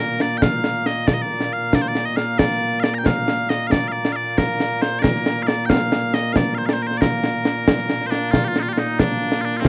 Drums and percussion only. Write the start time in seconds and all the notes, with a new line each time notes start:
0.20 snare
0.42 concert bass drum, snare
0.64 snare
0.86 snare
1.08 concert bass drum, snare
1.40 snare
1.73 concert bass drum, snare
1.95 snare
2.17 snare
2.39 concert bass drum, snare
2.50 snare
2.84 snare
3.06 concert bass drum, snare
3.28 snare
3.50 snare
3.72 concert bass drum, snare
4.05 snare
4.38 concert bass drum, snare
4.60 snare
4.82 snare
5.04 concert bass drum, snare
5.16 snare
5.26 snare
5.48 snare
5.70 concert bass drum, snare
5.92 snare
6.14 snare
6.36 concert bass drum, snare
6.69 snare
6.91 snare
7.02 concert bass drum, snare
7.24 snare
7.45 snare
7.68 concert bass drum, snare
7.79 snare
7.90 snare
8.01 snare
8.12 snare
8.33 concert bass drum, snare
8.56 snare
8.78 snare
8.99 concert bass drum, snare
9.32 snare
9.65 concert bass drum, snare